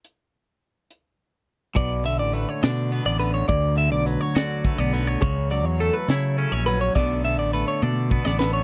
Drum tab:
HH |x-----x-----|x-x-x-x-x-x-|x-x-x-x-x-x-|x-x-x-x-x-x-|
SD |------------|------o-----|------o-----|------o-----|
T1 |------------|------------|------------|------------|
BD |------------|o-----------|o-------o---|o-----------|

HH |x-x-x-------|
SD |---------oo-|
T1 |------o-----|
BD |o-------o---|